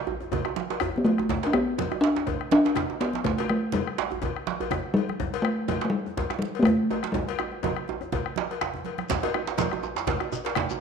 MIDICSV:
0, 0, Header, 1, 6, 480
1, 0, Start_track
1, 0, Key_signature, 1, "major"
1, 0, Tempo, 487805
1, 1277, Time_signature, 4, 2, 24, 8
1, 10632, End_track
2, 0, Start_track
2, 0, Title_t, "Talking drum"
2, 0, Program_c, 0, 116
2, 961, Note_on_c, 0, 59, 57
2, 1028, Note_on_c, 0, 57, 76
2, 1043, Note_off_c, 0, 59, 0
2, 1442, Note_on_c, 0, 62, 72
2, 1456, Note_off_c, 0, 57, 0
2, 1513, Note_on_c, 0, 59, 84
2, 1528, Note_off_c, 0, 62, 0
2, 1977, Note_on_c, 0, 62, 97
2, 1992, Note_off_c, 0, 59, 0
2, 2467, Note_off_c, 0, 62, 0
2, 2481, Note_on_c, 0, 62, 100
2, 2958, Note_on_c, 0, 59, 77
2, 2973, Note_off_c, 0, 62, 0
2, 3193, Note_on_c, 0, 57, 77
2, 3207, Note_off_c, 0, 59, 0
2, 3435, Note_off_c, 0, 57, 0
2, 3444, Note_on_c, 0, 57, 66
2, 3551, Note_off_c, 0, 57, 0
2, 3681, Note_on_c, 0, 55, 64
2, 4359, Note_off_c, 0, 55, 0
2, 4859, Note_on_c, 0, 55, 86
2, 5334, Note_on_c, 0, 57, 91
2, 5349, Note_off_c, 0, 55, 0
2, 5754, Note_off_c, 0, 57, 0
2, 5754, Note_on_c, 0, 57, 68
2, 5804, Note_on_c, 0, 55, 95
2, 5818, Note_off_c, 0, 57, 0
2, 6279, Note_off_c, 0, 55, 0
2, 6285, Note_on_c, 0, 55, 77
2, 6488, Note_on_c, 0, 59, 64
2, 6502, Note_off_c, 0, 55, 0
2, 6520, Note_on_c, 0, 57, 102
2, 6535, Note_off_c, 0, 59, 0
2, 7006, Note_on_c, 0, 55, 83
2, 7021, Note_off_c, 0, 57, 0
2, 8701, Note_off_c, 0, 55, 0
2, 10632, End_track
3, 0, Start_track
3, 0, Title_t, "Bombo"
3, 310, Note_on_c, 9, 43, 76
3, 409, Note_off_c, 9, 43, 0
3, 441, Note_on_c, 9, 37, 68
3, 540, Note_off_c, 9, 37, 0
3, 787, Note_on_c, 9, 37, 104
3, 886, Note_off_c, 9, 37, 0
3, 1164, Note_on_c, 9, 37, 64
3, 1262, Note_off_c, 9, 37, 0
3, 1273, Note_on_c, 9, 43, 83
3, 1372, Note_off_c, 9, 43, 0
3, 1509, Note_on_c, 9, 37, 106
3, 1608, Note_off_c, 9, 37, 0
3, 1887, Note_on_c, 9, 37, 62
3, 1985, Note_off_c, 9, 37, 0
3, 2240, Note_on_c, 9, 37, 24
3, 2240, Note_on_c, 9, 43, 85
3, 2338, Note_off_c, 9, 37, 0
3, 2338, Note_off_c, 9, 43, 0
3, 2370, Note_on_c, 9, 37, 63
3, 2469, Note_off_c, 9, 37, 0
3, 2721, Note_on_c, 9, 37, 89
3, 2819, Note_off_c, 9, 37, 0
3, 3200, Note_on_c, 9, 43, 70
3, 3298, Note_off_c, 9, 43, 0
3, 3439, Note_on_c, 9, 37, 87
3, 3537, Note_off_c, 9, 37, 0
3, 3813, Note_on_c, 9, 37, 62
3, 3911, Note_off_c, 9, 37, 0
3, 4159, Note_on_c, 9, 37, 24
3, 4159, Note_on_c, 9, 43, 72
3, 4257, Note_off_c, 9, 37, 0
3, 4257, Note_off_c, 9, 43, 0
3, 4295, Note_on_c, 9, 37, 58
3, 4393, Note_off_c, 9, 37, 0
3, 4641, Note_on_c, 9, 37, 91
3, 4739, Note_off_c, 9, 37, 0
3, 5014, Note_on_c, 9, 37, 65
3, 5113, Note_off_c, 9, 37, 0
3, 5114, Note_on_c, 9, 43, 75
3, 5212, Note_off_c, 9, 43, 0
3, 5360, Note_on_c, 9, 37, 93
3, 5458, Note_off_c, 9, 37, 0
3, 5724, Note_on_c, 9, 37, 66
3, 5822, Note_off_c, 9, 37, 0
3, 6074, Note_on_c, 9, 37, 26
3, 6074, Note_on_c, 9, 43, 86
3, 6172, Note_off_c, 9, 37, 0
3, 6172, Note_off_c, 9, 43, 0
3, 6200, Note_on_c, 9, 37, 71
3, 6299, Note_off_c, 9, 37, 0
3, 6547, Note_on_c, 9, 37, 100
3, 6646, Note_off_c, 9, 37, 0
3, 6916, Note_on_c, 9, 37, 63
3, 7014, Note_off_c, 9, 37, 0
3, 7022, Note_on_c, 9, 43, 75
3, 7120, Note_off_c, 9, 43, 0
3, 7268, Note_on_c, 9, 37, 92
3, 7367, Note_off_c, 9, 37, 0
3, 7406, Note_on_c, 9, 37, 30
3, 7504, Note_off_c, 9, 37, 0
3, 7640, Note_on_c, 9, 37, 61
3, 7739, Note_off_c, 9, 37, 0
3, 7887, Note_on_c, 9, 37, 30
3, 7986, Note_off_c, 9, 37, 0
3, 7996, Note_on_c, 9, 37, 24
3, 7996, Note_on_c, 9, 43, 79
3, 8095, Note_off_c, 9, 37, 0
3, 8095, Note_off_c, 9, 43, 0
3, 8126, Note_on_c, 9, 37, 67
3, 8225, Note_off_c, 9, 37, 0
3, 8475, Note_on_c, 9, 37, 94
3, 8573, Note_off_c, 9, 37, 0
3, 8844, Note_on_c, 9, 37, 63
3, 8942, Note_off_c, 9, 37, 0
3, 8960, Note_on_c, 9, 43, 78
3, 9058, Note_off_c, 9, 43, 0
3, 9194, Note_on_c, 9, 37, 98
3, 9292, Note_off_c, 9, 37, 0
3, 9559, Note_on_c, 9, 37, 59
3, 9658, Note_off_c, 9, 37, 0
3, 9905, Note_on_c, 9, 37, 27
3, 9905, Note_on_c, 9, 43, 81
3, 10003, Note_off_c, 9, 37, 0
3, 10003, Note_off_c, 9, 43, 0
3, 10040, Note_on_c, 9, 37, 73
3, 10138, Note_off_c, 9, 37, 0
3, 10385, Note_on_c, 9, 37, 103
3, 10484, Note_off_c, 9, 37, 0
3, 10632, End_track
4, 0, Start_track
4, 0, Title_t, "Djembe"
4, 70, Note_on_c, 9, 64, 97
4, 75, Note_on_c, 9, 62, 19
4, 168, Note_off_c, 9, 64, 0
4, 174, Note_off_c, 9, 62, 0
4, 201, Note_on_c, 9, 63, 57
4, 300, Note_off_c, 9, 63, 0
4, 312, Note_on_c, 9, 62, 65
4, 312, Note_on_c, 9, 64, 71
4, 320, Note_on_c, 9, 63, 69
4, 410, Note_off_c, 9, 62, 0
4, 410, Note_off_c, 9, 64, 0
4, 419, Note_off_c, 9, 63, 0
4, 443, Note_on_c, 9, 62, 19
4, 445, Note_on_c, 9, 63, 75
4, 542, Note_off_c, 9, 62, 0
4, 544, Note_off_c, 9, 63, 0
4, 554, Note_on_c, 9, 62, 67
4, 652, Note_off_c, 9, 62, 0
4, 692, Note_on_c, 9, 62, 66
4, 791, Note_off_c, 9, 62, 0
4, 794, Note_on_c, 9, 62, 72
4, 794, Note_on_c, 9, 63, 74
4, 794, Note_on_c, 9, 64, 63
4, 800, Note_off_c, 9, 64, 0
4, 800, Note_on_c, 9, 64, 83
4, 892, Note_off_c, 9, 62, 0
4, 892, Note_off_c, 9, 63, 0
4, 898, Note_off_c, 9, 64, 0
4, 1034, Note_on_c, 9, 63, 61
4, 1132, Note_off_c, 9, 63, 0
4, 1174, Note_on_c, 9, 63, 69
4, 1272, Note_off_c, 9, 63, 0
4, 1274, Note_on_c, 9, 62, 72
4, 1274, Note_on_c, 9, 64, 76
4, 1283, Note_off_c, 9, 62, 0
4, 1283, Note_on_c, 9, 62, 76
4, 1372, Note_off_c, 9, 64, 0
4, 1381, Note_off_c, 9, 62, 0
4, 1408, Note_on_c, 9, 62, 67
4, 1410, Note_on_c, 9, 63, 51
4, 1506, Note_off_c, 9, 62, 0
4, 1508, Note_off_c, 9, 63, 0
4, 1513, Note_on_c, 9, 64, 89
4, 1611, Note_off_c, 9, 64, 0
4, 1652, Note_on_c, 9, 62, 25
4, 1750, Note_off_c, 9, 62, 0
4, 1753, Note_on_c, 9, 63, 61
4, 1756, Note_on_c, 9, 62, 68
4, 1756, Note_on_c, 9, 64, 69
4, 1851, Note_off_c, 9, 63, 0
4, 1854, Note_off_c, 9, 62, 0
4, 1854, Note_off_c, 9, 64, 0
4, 1886, Note_on_c, 9, 63, 79
4, 1984, Note_off_c, 9, 63, 0
4, 2004, Note_on_c, 9, 62, 83
4, 2102, Note_off_c, 9, 62, 0
4, 2121, Note_on_c, 9, 63, 55
4, 2130, Note_on_c, 9, 62, 69
4, 2220, Note_off_c, 9, 63, 0
4, 2229, Note_off_c, 9, 62, 0
4, 2230, Note_on_c, 9, 62, 69
4, 2230, Note_on_c, 9, 64, 62
4, 2329, Note_off_c, 9, 62, 0
4, 2329, Note_off_c, 9, 64, 0
4, 2480, Note_on_c, 9, 62, 92
4, 2578, Note_off_c, 9, 62, 0
4, 2616, Note_on_c, 9, 62, 75
4, 2711, Note_off_c, 9, 62, 0
4, 2711, Note_on_c, 9, 62, 70
4, 2711, Note_on_c, 9, 63, 75
4, 2711, Note_on_c, 9, 64, 70
4, 2725, Note_off_c, 9, 62, 0
4, 2725, Note_on_c, 9, 62, 76
4, 2809, Note_off_c, 9, 63, 0
4, 2809, Note_off_c, 9, 64, 0
4, 2823, Note_off_c, 9, 62, 0
4, 2852, Note_on_c, 9, 63, 67
4, 2950, Note_off_c, 9, 63, 0
4, 2961, Note_on_c, 9, 62, 93
4, 3060, Note_off_c, 9, 62, 0
4, 3101, Note_on_c, 9, 62, 66
4, 3191, Note_off_c, 9, 62, 0
4, 3191, Note_on_c, 9, 62, 76
4, 3191, Note_on_c, 9, 64, 66
4, 3211, Note_off_c, 9, 62, 0
4, 3211, Note_on_c, 9, 62, 76
4, 3289, Note_off_c, 9, 64, 0
4, 3310, Note_off_c, 9, 62, 0
4, 3321, Note_on_c, 9, 63, 50
4, 3346, Note_off_c, 9, 63, 0
4, 3346, Note_on_c, 9, 63, 73
4, 3445, Note_off_c, 9, 63, 0
4, 3560, Note_on_c, 9, 62, 21
4, 3659, Note_off_c, 9, 62, 0
4, 3673, Note_on_c, 9, 62, 68
4, 3673, Note_on_c, 9, 64, 70
4, 3772, Note_off_c, 9, 62, 0
4, 3772, Note_off_c, 9, 64, 0
4, 3920, Note_on_c, 9, 62, 99
4, 4018, Note_off_c, 9, 62, 0
4, 4039, Note_on_c, 9, 63, 53
4, 4052, Note_on_c, 9, 64, 69
4, 4137, Note_off_c, 9, 63, 0
4, 4149, Note_off_c, 9, 64, 0
4, 4149, Note_on_c, 9, 62, 63
4, 4149, Note_on_c, 9, 64, 61
4, 4163, Note_on_c, 9, 63, 59
4, 4248, Note_off_c, 9, 62, 0
4, 4248, Note_off_c, 9, 64, 0
4, 4262, Note_off_c, 9, 63, 0
4, 4392, Note_on_c, 9, 62, 19
4, 4398, Note_off_c, 9, 62, 0
4, 4398, Note_on_c, 9, 62, 80
4, 4497, Note_off_c, 9, 62, 0
4, 4530, Note_on_c, 9, 64, 74
4, 4628, Note_off_c, 9, 64, 0
4, 4632, Note_on_c, 9, 62, 65
4, 4632, Note_on_c, 9, 63, 76
4, 4632, Note_on_c, 9, 64, 61
4, 4730, Note_off_c, 9, 62, 0
4, 4730, Note_off_c, 9, 64, 0
4, 4731, Note_off_c, 9, 63, 0
4, 5114, Note_on_c, 9, 62, 71
4, 5114, Note_on_c, 9, 64, 69
4, 5213, Note_off_c, 9, 62, 0
4, 5213, Note_off_c, 9, 64, 0
4, 5244, Note_on_c, 9, 63, 50
4, 5342, Note_off_c, 9, 63, 0
4, 5482, Note_on_c, 9, 62, 21
4, 5580, Note_off_c, 9, 62, 0
4, 5590, Note_on_c, 9, 63, 85
4, 5594, Note_on_c, 9, 62, 72
4, 5594, Note_on_c, 9, 64, 70
4, 5689, Note_off_c, 9, 63, 0
4, 5693, Note_off_c, 9, 62, 0
4, 5693, Note_off_c, 9, 64, 0
4, 5721, Note_on_c, 9, 62, 70
4, 5819, Note_off_c, 9, 62, 0
4, 5966, Note_on_c, 9, 63, 53
4, 6064, Note_off_c, 9, 63, 0
4, 6075, Note_on_c, 9, 62, 57
4, 6075, Note_on_c, 9, 63, 80
4, 6075, Note_on_c, 9, 64, 60
4, 6173, Note_off_c, 9, 62, 0
4, 6173, Note_off_c, 9, 63, 0
4, 6173, Note_off_c, 9, 64, 0
4, 6204, Note_on_c, 9, 62, 73
4, 6302, Note_off_c, 9, 62, 0
4, 6320, Note_on_c, 9, 62, 20
4, 6418, Note_off_c, 9, 62, 0
4, 6555, Note_on_c, 9, 62, 69
4, 6555, Note_on_c, 9, 63, 67
4, 6555, Note_on_c, 9, 64, 68
4, 6653, Note_off_c, 9, 62, 0
4, 6653, Note_off_c, 9, 63, 0
4, 6653, Note_off_c, 9, 64, 0
4, 6795, Note_on_c, 9, 63, 85
4, 6893, Note_off_c, 9, 63, 0
4, 6925, Note_on_c, 9, 62, 70
4, 7024, Note_off_c, 9, 62, 0
4, 7027, Note_on_c, 9, 62, 76
4, 7027, Note_on_c, 9, 64, 75
4, 7035, Note_on_c, 9, 63, 92
4, 7125, Note_off_c, 9, 62, 0
4, 7125, Note_off_c, 9, 64, 0
4, 7133, Note_off_c, 9, 63, 0
4, 7157, Note_on_c, 9, 63, 47
4, 7256, Note_off_c, 9, 63, 0
4, 7264, Note_on_c, 9, 62, 20
4, 7277, Note_on_c, 9, 63, 80
4, 7363, Note_off_c, 9, 62, 0
4, 7376, Note_off_c, 9, 63, 0
4, 7397, Note_on_c, 9, 62, 23
4, 7496, Note_off_c, 9, 62, 0
4, 7507, Note_on_c, 9, 62, 68
4, 7507, Note_on_c, 9, 64, 61
4, 7522, Note_on_c, 9, 63, 90
4, 7606, Note_off_c, 9, 62, 0
4, 7606, Note_off_c, 9, 64, 0
4, 7620, Note_off_c, 9, 63, 0
4, 7764, Note_on_c, 9, 63, 92
4, 7862, Note_off_c, 9, 63, 0
4, 7880, Note_on_c, 9, 62, 23
4, 7880, Note_on_c, 9, 63, 55
4, 7979, Note_off_c, 9, 62, 0
4, 7979, Note_off_c, 9, 63, 0
4, 7995, Note_on_c, 9, 62, 67
4, 7995, Note_on_c, 9, 63, 76
4, 7995, Note_on_c, 9, 64, 59
4, 8093, Note_off_c, 9, 63, 0
4, 8094, Note_off_c, 9, 62, 0
4, 8094, Note_off_c, 9, 64, 0
4, 8129, Note_on_c, 9, 62, 18
4, 8228, Note_off_c, 9, 62, 0
4, 8241, Note_on_c, 9, 62, 90
4, 8339, Note_off_c, 9, 62, 0
4, 8477, Note_on_c, 9, 62, 86
4, 8481, Note_on_c, 9, 64, 39
4, 8575, Note_off_c, 9, 62, 0
4, 8580, Note_off_c, 9, 64, 0
4, 8605, Note_on_c, 9, 64, 41
4, 8704, Note_off_c, 9, 64, 0
4, 8713, Note_on_c, 9, 62, 45
4, 8811, Note_off_c, 9, 62, 0
4, 8840, Note_on_c, 9, 62, 52
4, 8939, Note_off_c, 9, 62, 0
4, 8956, Note_on_c, 9, 62, 79
4, 8956, Note_on_c, 9, 64, 76
4, 8960, Note_off_c, 9, 62, 0
4, 8960, Note_on_c, 9, 62, 95
4, 9054, Note_off_c, 9, 64, 0
4, 9058, Note_off_c, 9, 62, 0
4, 9085, Note_on_c, 9, 63, 55
4, 9086, Note_off_c, 9, 63, 0
4, 9086, Note_on_c, 9, 63, 83
4, 9185, Note_off_c, 9, 63, 0
4, 9198, Note_on_c, 9, 63, 75
4, 9296, Note_off_c, 9, 63, 0
4, 9319, Note_on_c, 9, 62, 21
4, 9323, Note_off_c, 9, 62, 0
4, 9323, Note_on_c, 9, 62, 77
4, 9421, Note_off_c, 9, 62, 0
4, 9423, Note_on_c, 9, 62, 66
4, 9423, Note_on_c, 9, 64, 63
4, 9429, Note_off_c, 9, 62, 0
4, 9429, Note_on_c, 9, 62, 89
4, 9522, Note_off_c, 9, 64, 0
4, 9527, Note_off_c, 9, 62, 0
4, 9572, Note_on_c, 9, 63, 80
4, 9670, Note_off_c, 9, 63, 0
4, 9676, Note_on_c, 9, 63, 78
4, 9774, Note_off_c, 9, 63, 0
4, 9799, Note_on_c, 9, 63, 56
4, 9804, Note_on_c, 9, 62, 81
4, 9897, Note_off_c, 9, 63, 0
4, 9903, Note_off_c, 9, 62, 0
4, 9914, Note_on_c, 9, 62, 89
4, 9914, Note_on_c, 9, 64, 65
4, 10012, Note_off_c, 9, 62, 0
4, 10012, Note_off_c, 9, 64, 0
4, 10043, Note_on_c, 9, 63, 76
4, 10141, Note_off_c, 9, 63, 0
4, 10152, Note_on_c, 9, 62, 21
4, 10158, Note_on_c, 9, 63, 80
4, 10250, Note_off_c, 9, 62, 0
4, 10257, Note_off_c, 9, 63, 0
4, 10293, Note_on_c, 9, 62, 86
4, 10392, Note_off_c, 9, 62, 0
4, 10392, Note_on_c, 9, 62, 67
4, 10392, Note_on_c, 9, 63, 62
4, 10392, Note_on_c, 9, 64, 64
4, 10401, Note_off_c, 9, 62, 0
4, 10401, Note_on_c, 9, 62, 90
4, 10490, Note_off_c, 9, 63, 0
4, 10490, Note_off_c, 9, 64, 0
4, 10499, Note_off_c, 9, 62, 0
4, 10539, Note_on_c, 9, 63, 78
4, 10632, Note_off_c, 9, 63, 0
4, 10632, End_track
5, 0, Start_track
5, 0, Title_t, "Shekere"
5, 8949, Note_on_c, 9, 82, 61
5, 9047, Note_off_c, 9, 82, 0
5, 9326, Note_on_c, 9, 82, 18
5, 9424, Note_off_c, 9, 82, 0
5, 9430, Note_on_c, 9, 82, 57
5, 9529, Note_off_c, 9, 82, 0
5, 9674, Note_on_c, 9, 82, 16
5, 9772, Note_off_c, 9, 82, 0
5, 9812, Note_on_c, 9, 82, 46
5, 9911, Note_off_c, 9, 82, 0
5, 10160, Note_on_c, 9, 82, 57
5, 10258, Note_off_c, 9, 82, 0
5, 10289, Note_on_c, 9, 82, 16
5, 10388, Note_off_c, 9, 82, 0
5, 10525, Note_on_c, 9, 82, 47
5, 10623, Note_off_c, 9, 82, 0
5, 10632, End_track
6, 0, Start_track
6, 0, Title_t, "Drums"
6, 219, Note_on_c, 9, 63, 20
6, 318, Note_off_c, 9, 63, 0
6, 321, Note_on_c, 9, 56, 45
6, 324, Note_on_c, 9, 64, 76
6, 419, Note_off_c, 9, 56, 0
6, 422, Note_off_c, 9, 64, 0
6, 556, Note_on_c, 9, 63, 68
6, 654, Note_off_c, 9, 63, 0
6, 690, Note_on_c, 9, 63, 24
6, 693, Note_on_c, 9, 56, 38
6, 789, Note_off_c, 9, 63, 0
6, 791, Note_off_c, 9, 56, 0
6, 801, Note_on_c, 9, 64, 38
6, 900, Note_off_c, 9, 64, 0
6, 945, Note_on_c, 9, 64, 42
6, 1040, Note_on_c, 9, 56, 38
6, 1044, Note_off_c, 9, 64, 0
6, 1045, Note_on_c, 9, 63, 56
6, 1138, Note_off_c, 9, 56, 0
6, 1144, Note_off_c, 9, 63, 0
6, 1172, Note_on_c, 9, 63, 59
6, 1270, Note_off_c, 9, 63, 0
6, 1273, Note_on_c, 9, 64, 77
6, 1371, Note_off_c, 9, 64, 0
6, 1414, Note_on_c, 9, 56, 48
6, 1512, Note_off_c, 9, 56, 0
6, 1525, Note_on_c, 9, 63, 23
6, 1623, Note_off_c, 9, 63, 0
6, 1758, Note_on_c, 9, 56, 48
6, 1760, Note_on_c, 9, 63, 82
6, 1760, Note_on_c, 9, 64, 83
6, 1856, Note_off_c, 9, 56, 0
6, 1858, Note_off_c, 9, 63, 0
6, 1858, Note_off_c, 9, 64, 0
6, 2127, Note_on_c, 9, 63, 21
6, 2225, Note_off_c, 9, 63, 0
6, 2232, Note_on_c, 9, 56, 48
6, 2234, Note_on_c, 9, 64, 71
6, 2331, Note_off_c, 9, 56, 0
6, 2332, Note_off_c, 9, 64, 0
6, 2474, Note_on_c, 9, 63, 76
6, 2572, Note_off_c, 9, 63, 0
6, 2598, Note_on_c, 9, 63, 22
6, 2610, Note_on_c, 9, 56, 43
6, 2696, Note_off_c, 9, 63, 0
6, 2708, Note_off_c, 9, 56, 0
6, 2714, Note_on_c, 9, 64, 80
6, 2813, Note_off_c, 9, 64, 0
6, 2957, Note_on_c, 9, 56, 46
6, 3055, Note_off_c, 9, 56, 0
6, 3084, Note_on_c, 9, 63, 49
6, 3182, Note_off_c, 9, 63, 0
6, 3194, Note_on_c, 9, 64, 79
6, 3293, Note_off_c, 9, 64, 0
6, 3330, Note_on_c, 9, 56, 62
6, 3428, Note_off_c, 9, 56, 0
6, 3435, Note_on_c, 9, 63, 24
6, 3533, Note_off_c, 9, 63, 0
6, 3664, Note_on_c, 9, 63, 74
6, 3664, Note_on_c, 9, 64, 78
6, 3684, Note_on_c, 9, 56, 56
6, 3762, Note_off_c, 9, 63, 0
6, 3762, Note_off_c, 9, 64, 0
6, 3782, Note_off_c, 9, 56, 0
6, 4047, Note_on_c, 9, 63, 20
6, 4145, Note_off_c, 9, 63, 0
6, 4157, Note_on_c, 9, 64, 68
6, 4166, Note_on_c, 9, 56, 47
6, 4256, Note_off_c, 9, 64, 0
6, 4264, Note_off_c, 9, 56, 0
6, 4397, Note_on_c, 9, 63, 62
6, 4496, Note_off_c, 9, 63, 0
6, 4531, Note_on_c, 9, 63, 21
6, 4533, Note_on_c, 9, 56, 49
6, 4630, Note_off_c, 9, 63, 0
6, 4632, Note_off_c, 9, 56, 0
6, 4636, Note_on_c, 9, 64, 69
6, 4734, Note_off_c, 9, 64, 0
6, 4886, Note_on_c, 9, 56, 45
6, 4984, Note_off_c, 9, 56, 0
6, 5010, Note_on_c, 9, 63, 47
6, 5108, Note_off_c, 9, 63, 0
6, 5115, Note_on_c, 9, 64, 60
6, 5213, Note_off_c, 9, 64, 0
6, 5252, Note_on_c, 9, 56, 58
6, 5350, Note_off_c, 9, 56, 0
6, 5356, Note_on_c, 9, 63, 20
6, 5454, Note_off_c, 9, 63, 0
6, 5595, Note_on_c, 9, 63, 67
6, 5595, Note_on_c, 9, 64, 69
6, 5602, Note_on_c, 9, 56, 58
6, 5693, Note_off_c, 9, 63, 0
6, 5693, Note_off_c, 9, 64, 0
6, 5701, Note_off_c, 9, 56, 0
6, 5970, Note_on_c, 9, 63, 19
6, 6069, Note_off_c, 9, 63, 0
6, 6075, Note_on_c, 9, 56, 45
6, 6077, Note_on_c, 9, 64, 67
6, 6173, Note_off_c, 9, 56, 0
6, 6175, Note_off_c, 9, 64, 0
6, 6317, Note_on_c, 9, 63, 62
6, 6415, Note_off_c, 9, 63, 0
6, 6445, Note_on_c, 9, 56, 44
6, 6454, Note_on_c, 9, 63, 20
6, 6543, Note_off_c, 9, 56, 0
6, 6552, Note_off_c, 9, 63, 0
6, 6561, Note_on_c, 9, 64, 64
6, 6659, Note_off_c, 9, 64, 0
6, 6799, Note_on_c, 9, 56, 51
6, 6898, Note_off_c, 9, 56, 0
6, 6921, Note_on_c, 9, 63, 47
6, 7019, Note_off_c, 9, 63, 0
6, 7033, Note_on_c, 9, 63, 19
6, 7033, Note_on_c, 9, 64, 61
6, 7132, Note_off_c, 9, 63, 0
6, 7132, Note_off_c, 9, 64, 0
6, 7168, Note_on_c, 9, 56, 58
6, 7267, Note_off_c, 9, 56, 0
6, 7279, Note_on_c, 9, 63, 20
6, 7377, Note_off_c, 9, 63, 0
6, 7517, Note_on_c, 9, 63, 65
6, 7517, Note_on_c, 9, 64, 74
6, 7518, Note_on_c, 9, 56, 55
6, 7615, Note_off_c, 9, 63, 0
6, 7615, Note_off_c, 9, 64, 0
6, 7616, Note_off_c, 9, 56, 0
6, 7648, Note_on_c, 9, 63, 20
6, 7747, Note_off_c, 9, 63, 0
6, 7752, Note_on_c, 9, 63, 20
6, 7851, Note_off_c, 9, 63, 0
6, 7993, Note_on_c, 9, 63, 21
6, 7993, Note_on_c, 9, 64, 69
6, 8000, Note_on_c, 9, 56, 47
6, 8092, Note_off_c, 9, 63, 0
6, 8092, Note_off_c, 9, 64, 0
6, 8098, Note_off_c, 9, 56, 0
6, 8226, Note_on_c, 9, 63, 58
6, 8324, Note_off_c, 9, 63, 0
6, 8374, Note_on_c, 9, 56, 44
6, 8472, Note_off_c, 9, 56, 0
6, 8473, Note_on_c, 9, 64, 41
6, 8572, Note_off_c, 9, 64, 0
6, 8596, Note_on_c, 9, 64, 43
6, 8695, Note_off_c, 9, 64, 0
6, 8703, Note_on_c, 9, 63, 51
6, 8719, Note_on_c, 9, 56, 37
6, 8802, Note_off_c, 9, 63, 0
6, 8817, Note_off_c, 9, 56, 0
6, 8838, Note_on_c, 9, 63, 56
6, 8936, Note_off_c, 9, 63, 0
6, 8952, Note_on_c, 9, 64, 92
6, 9051, Note_off_c, 9, 64, 0
6, 9085, Note_on_c, 9, 56, 65
6, 9183, Note_off_c, 9, 56, 0
6, 9194, Note_on_c, 9, 63, 25
6, 9292, Note_off_c, 9, 63, 0
6, 9431, Note_on_c, 9, 63, 82
6, 9431, Note_on_c, 9, 64, 89
6, 9434, Note_on_c, 9, 56, 60
6, 9530, Note_off_c, 9, 63, 0
6, 9530, Note_off_c, 9, 64, 0
6, 9532, Note_off_c, 9, 56, 0
6, 9813, Note_on_c, 9, 63, 25
6, 9909, Note_on_c, 9, 64, 84
6, 9910, Note_on_c, 9, 56, 50
6, 9912, Note_off_c, 9, 63, 0
6, 10007, Note_off_c, 9, 64, 0
6, 10008, Note_off_c, 9, 56, 0
6, 10280, Note_on_c, 9, 56, 44
6, 10378, Note_off_c, 9, 56, 0
6, 10394, Note_on_c, 9, 64, 88
6, 10492, Note_off_c, 9, 64, 0
6, 10632, End_track
0, 0, End_of_file